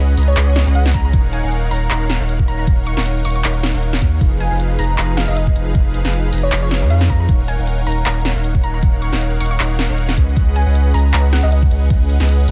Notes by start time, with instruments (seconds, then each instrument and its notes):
Already playing: sub bass C#2, supersaw synth C#4 G#4 B4 D#5 F#5
0.17 sub bass C#2, supersaw synth C#4 G#4 B4 D#5 A#5, open hi-hat
0.23 closed hi-hat
0.28 synth pluck C#5
0.36 sub bass C#2, supersaw synth C#4 G#4 B4 D#5 F#5, clap, closed hi-hat
0.47 synth pluck C#5
0.56 synth pluck C#5, snare, closed hi-hat
0.66 sub bass C#2, supersaw synth C#4 G#4 B4 D#5 F#5
0.75 synth pluck F#5, closed hi-hat
0.86 snare
0.94 sub bass C#2, supersaw synth C#4 B4 A#5, synth pluck A#5, kick, closed hi-hat
1.05 synth pluck A#5
1.13 sub bass D#1, supersaw synth D#4 A#4 C#5 F5 F#5, kick, closed hi-hat
1.33 synth pluck G#5, closed hi-hat
1.43 sub bass D#1, supersaw synth D#4 A#4 C#5 F5 F#5
1.52 closed hi-hat
1.71 sub bass D#1, supersaw synth D#4 A#4 C#5 F5 F#5, synth pluck A#5, open hi-hat
1.76 closed hi-hat
1.90 sub bass D#1, supersaw synth D#4 A#4 C#5 F5 F#5, synth pluck A#5, clap, closed hi-hat
2.10 snare, closed hi-hat
2.20 sub bass D#1, supersaw synth D#4 A#4 C#5 F5 F#5
2.29 closed hi-hat
2.39 kick
2.48 sub bass D#1, supersaw synth D#4 A#4 C#5 F5 F#5, synth pluck A#5, closed hi-hat
2.59 synth pluck A#5
2.67 sub bass D#1, supersaw synth D#4 A#4 C#5 F5 F#5, kick, closed hi-hat
2.86 synth pluck C#6, closed hi-hat
2.97 sub bass D#1, supersaw synth D#4 A#4 C#5 F5 F#5, snare
3.06 closed hi-hat
3.25 sub bass D#1, supersaw synth D#4 A#4 C#5 F5 F#5, synth pluck C#6, open hi-hat
3.30 closed hi-hat
3.36 synth pluck C#6
3.44 sub bass D#1, supersaw synth D#4 A#4 C#5 F5 F#5, clap, closed hi-hat
3.63 snare, closed hi-hat
3.74 sub bass D#1, supersaw synth D#4 A#4 C#5 F5 F#5
3.83 closed hi-hat
3.93 snare
4.02 sub bass D#2, supersaw synth D#4 A#4 C#5 F#5, kick, closed hi-hat
4.21 sub bass F1, supersaw synth F3 D#4 G#4 B4 F5, kick, closed hi-hat
4.40 synth pluck G#5, closed hi-hat
4.51 sub bass F1, supersaw synth F3 D#4 G#4 B4 F5
4.60 closed hi-hat
4.79 sub bass F1, supersaw synth F3 D#4 G#4 B4 A#5, synth pluck A#5, open hi-hat
4.84 closed hi-hat
4.98 sub bass F1, supersaw synth F3 D#4 G#4 B4 F5, synth pluck A#5, clap, closed hi-hat
5.17 synth pluck F5, snare, closed hi-hat
5.28 sub bass F1, supersaw synth F3 D#4 G#4 B4 F5, synth pluck D#5
5.36 synth pluck D#5, closed hi-hat
5.47 kick
5.56 sub bass F1, supersaw synth F3 D#4 G#4 B4 F5, closed hi-hat
5.75 sub bass F1, supersaw synth F3 D#4 G#4 B4 F5, kick, closed hi-hat
5.94 closed hi-hat
6.05 sub bass F1, supersaw synth F3 D#4 G#4 B4 F5, snare
6.13 closed hi-hat
6.33 sub bass F1, supersaw synth F3 D#4 G#4 B4 A#5, open hi-hat
6.38 closed hi-hat
6.43 synth pluck C#5
6.52 sub bass F1, supersaw synth F3 D#4 G#4 B4 F5, clap, closed hi-hat
6.63 synth pluck C#5
6.71 synth pluck C#5, snare, closed hi-hat
6.82 sub bass F2, supersaw synth F3 D#4 G#4 B4 F5
6.90 synth pluck F5, closed hi-hat
7.01 snare
7.09 sub bass F2, supersaw synth F3 D#4 G#4 B4 A#5, synth pluck A#5, kick, closed hi-hat
7.20 synth pluck A#5
7.29 sub bass D#1, supersaw synth D#4 A#4 C#5 F5 F#5, kick, closed hi-hat
7.48 synth pluck G#5, closed hi-hat
7.59 sub bass D#1, supersaw synth D#4 A#4 C#5 F5 F#5
7.67 closed hi-hat
7.86 sub bass D#1, supersaw synth D#4 A#4 C#5 F5 F#5, synth pluck A#5, open hi-hat
7.92 closed hi-hat
8.06 sub bass D#1, supersaw synth D#4 A#4 C#5 F5 F#5, synth pluck A#5, clap, closed hi-hat
8.25 snare, closed hi-hat
8.35 sub bass D#1, supersaw synth D#4 A#4 C#5 F5 F#5
8.44 closed hi-hat
8.55 kick
8.63 sub bass D#1, supersaw synth D#4 A#4 C#5 F5 F#5, synth pluck A#5, closed hi-hat
8.74 synth pluck A#5
8.83 sub bass D#1, supersaw synth D#4 C#5 F5 F#5, kick, closed hi-hat
9.02 synth pluck C#6, closed hi-hat
9.12 sub bass D#1, supersaw synth D#4 A#4 C#5 F5 F#5, snare
9.21 closed hi-hat
9.40 sub bass D#1, supersaw synth D#4 A#4 C#5 F5 F#5, synth pluck C#6, open hi-hat
9.46 closed hi-hat
9.51 synth pluck C#6
9.60 sub bass D#1, supersaw synth D#4 A#4 C#5 F5 F#5, clap, closed hi-hat
9.79 snare, closed hi-hat
9.89 sub bass D#1, supersaw synth D#4 A#4 C#5 F5 F#5
9.98 closed hi-hat
10.09 snare
10.17 sub bass C#2, supersaw synth C#4 G#4 B4 D#5, kick, closed hi-hat
10.37 sub bass C#2, supersaw synth C#4 G#4 B4 D#5 F#5, kick, closed hi-hat
10.56 synth pluck G#5, closed hi-hat
10.66 sub bass C#2, supersaw synth C#4 G#4 B4 D#5 F#5
10.75 closed hi-hat
10.94 sub bass C#2, supersaw synth C#4 G#4 B4 D#5 A#5, synth pluck A#5, open hi-hat
11.00 closed hi-hat
11.13 sub bass C#2, supersaw synth C#4 G#4 B4 D#5 F#5, synth pluck A#5, clap, closed hi-hat
11.33 synth pluck F#5, snare, closed hi-hat
11.43 sub bass C#2, supersaw synth C#4 G#4 B4 D#5 F#5, synth pluck D#5
11.52 synth pluck D#5, closed hi-hat
11.62 kick
11.71 sub bass C#2, supersaw synth C#4 G#4 B4 D#5 F#5, closed hi-hat
11.90 sub bass C#2, supersaw synth C#4 G#4 B4 F#5, kick, closed hi-hat
12.10 closed hi-hat
12.20 sub bass C#2, supersaw synth C#4 G#4 B4 D#5 F#5, snare
12.29 closed hi-hat
12.48 sub bass C#2, supersaw synth C#4 G#4 B4 D#5 A#5, open hi-hat